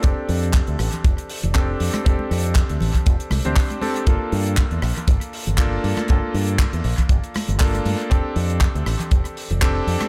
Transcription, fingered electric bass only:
X:1
M:4/4
L:1/16
Q:"Swing 16ths" 1/4=119
K:Fmix
V:1 name="Fingered electric bass" clef=bass
F,,, z F,,2 z D,, A,,, z F,,, z2 F,,,2 z F,, z | F,,, z F,,2 z D,, A,,, z F,,, z C,, D,, z4 | G,,, z G,,2 z =E,, B,,, z G,,, z2 G,,,2 z G,, z | G,,, z G,,2 z =E,, B,,, z G,,, z2 G,,,2 z G,, z |
F,,, z F,,2 z D,, A,,, z F,,, z2 F,,,2 z F,, z |]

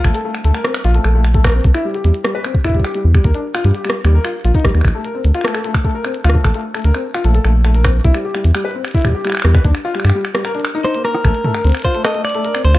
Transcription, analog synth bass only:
X:1
M:4/4
L:1/16
Q:1/4=150
K:Bb
V:1 name="Analog synth bass" clef=bass
B,,, z3 D,, z3 B,,, z B,,,6 | C,, z3 =E,, z8 z E,, z | E,, z3 G,, z3 E,, z3 B,,, z B,,, E,, | B,,, z3 D,, z8 z D,, z |
B,,, z3 D,, z3 B,,, z B,,,6 | C,, z3 =E,, z8 z E,, z | E,, z3 G,, z8 z3 | B,,, z3 D,, z8 z D,, z |]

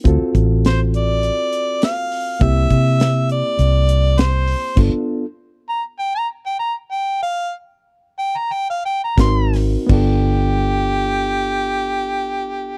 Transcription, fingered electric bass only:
X:1
M:4/4
L:1/16
Q:"Swing 16ths" 1/4=100
K:Ddor
V:1 name="Fingered electric bass" clef=bass
D,, z A,,,8 z6 | C,,2 C,6 C,,8 | G,,, z12 z3 | z12 _A,,,4 |
G,,,16 |]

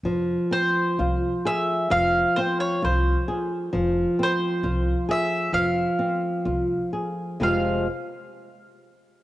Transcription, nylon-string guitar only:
X:1
M:2/4
L:1/8
Q:1/4=65
K:Fm
V:1 name="Nylon-string guitar"
F, C F A | F, C F A | F, C F A | F, C F A |
[F,,C,F,A,Gc] z3 |]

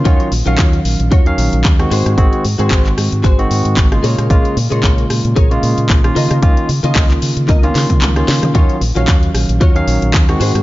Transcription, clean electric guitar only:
X:1
M:4/4
L:1/16
Q:"Swing 16ths" 1/4=113
K:Ebdor
V:1 name="Clean electric guitar"
[FGd]2 z [FGd]3 z2 [FGd] z4 z [GAc]2- | [GAc]2 z [GAc]3 z2 [GAc] z4 z [ABd]2- | [ABd]2 z [ABd]3 z2 [ABd] z4 z [FBe]2- | [FBe]2 z [FBe]3 z2 [FBe] z6 z |
[FGd]2 z [FGd]3 z2 [FGd] z4 z [GAc]2 |]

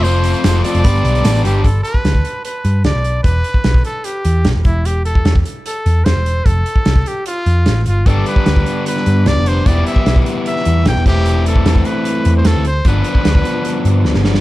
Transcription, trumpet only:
X:1
M:4/4
L:1/16
Q:1/4=150
K:Gmix
V:1 name="Trumpet"
c6 d8 G2 | A2 B6 B4 d4 | B6 A2 G6 E2 | G2 A3 z3 A4 c4 |
A6 G2 F6 F2 | A2 B6 B4 d2 c2 | d2 e3 z3 e4 g2 G2- | G2 A4 B4- B c A2 c2 |
B12 z4 |]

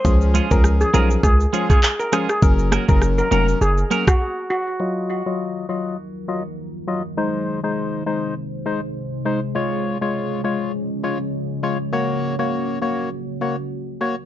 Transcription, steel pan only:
X:1
M:4/4
L:1/16
Q:"Swing 16ths" 1/4=101
K:Ebm
V:1 name="Steel pan"
z3 B z A B z A z2 A z B z A | z3 B z B B z A z2 G z2 G z | z16 | z16 |
z16 | z16 |]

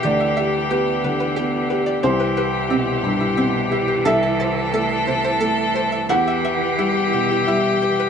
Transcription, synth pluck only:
X:1
M:3/4
L:1/16
Q:1/4=89
K:Em
V:1 name="Synth pluck"
G e e z G z B B G z B d | C B B z C z E E C z E G | A a a z A z c c A z c e | E e e z E z G G E z G B |]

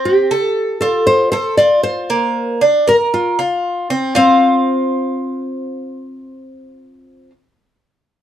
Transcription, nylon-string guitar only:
X:1
M:4/4
L:1/8
Q:1/4=117
K:F
V:1 name="Nylon-string guitar"
G3 A c c d c- | c2 z B F3 z | C8- | C8 |]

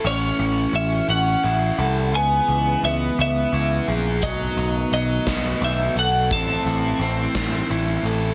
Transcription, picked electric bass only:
X:1
M:6/8
L:1/8
Q:3/8=57
K:F#dor
V:1 name="Picked electric bass" clef=bass
A,,, A,,, A,,, A,,, A,,, =C,, | C,, C,, C,, C,, C,, ^A,,, | B,,, B,,, B,,, B,,, B,,, B,,, | A,,, A,,, A,,, A,,, A,,, A,,, |]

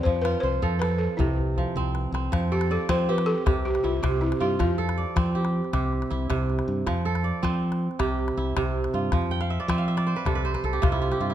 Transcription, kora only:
X:1
M:12/8
L:1/16
Q:3/8=106
K:Flyd
V:1 name="Kora"
z2 F2 c2 A2 A6 z2 F,6 C2- | C2 A2 d4 G4 G4 E6 F2- | F2 A2 d4 G4 G4 E6 z2 | z2 A2 d6 z2 G4 E6 F2- |
F2 g f e d e f e d c B A B c B A G F E F G F E |]
V:2 name="Kora" clef=bass
F,4 z2 F,4 z2 C,4 z2 C4 z2 | F,4 z2 C4 z2 C,4 z2 C,4 z2 | F,4 z2 C4 z2 C,4 z2 C,4 z2 | F,4 z2 C4 z2 C,4 z2 C,4 z2 |
F,4 z2 C4 z2 C,4 z2 C,4 z2 |]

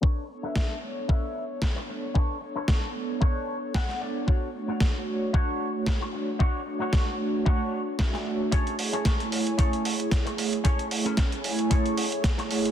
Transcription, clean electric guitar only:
X:1
M:4/4
L:1/16
Q:"Swing 16ths" 1/4=113
K:Bdor
V:1 name="Clean electric guitar"
[DABc]2 z [DABe]3 z2 [DABe]2 z6 | [DABc]2 z [DABc]3 z2 [DABc]2 z2 f2 d2 | [DFc]2 z [DFc]3 z2 [DFc]2 z6 | [DFc]2 z [DFc]3 z2 [DFc]2 z6 |
[CGAc]2 z [CGAc]3 z2 [CGAc]2 z6 | [CGAc]2 z [CGAB]3 z2 [CGAc]2 z6 |]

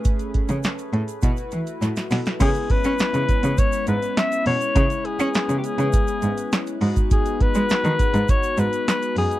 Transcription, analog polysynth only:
X:1
M:4/4
L:1/8
Q:1/4=102
K:C#m
V:1 name="Analog polysynth"
[A,CGB]4 [A,EFB]4 | [G,B,CEAB]8- | [G,B,CEAB]6- [G,B,CEAB] [G,B,DFB]- | [G,B,DFB]8 |]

